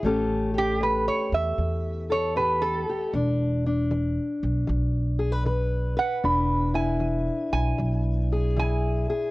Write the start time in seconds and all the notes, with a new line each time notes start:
0.03 A1 A2 A3 C#4 G4 A4
0.54 G4
0.58 G4
0.81 A2 B4
1.08 C#5
1.32 E2 E5
1.58 E2 A2
2.10 A4 C#5
2.36 A2 G4 B4
2.62 A4
2.89 G4
3.13 E1 E3 D4
3.66 D4
3.91 E3
4.43 B1
4.67 B1 E3
5.19 G#4
5.32 B4
5.45 E3 B4
5.97 B4 F#5
6.24 E1 E3 D4 B5
6.74 E4 G#5
7.00 E3
7.53 B1 G#5
7.78 B1 E3
8.32 G#4
8.56 E3 E4 G#5
9.10 G#4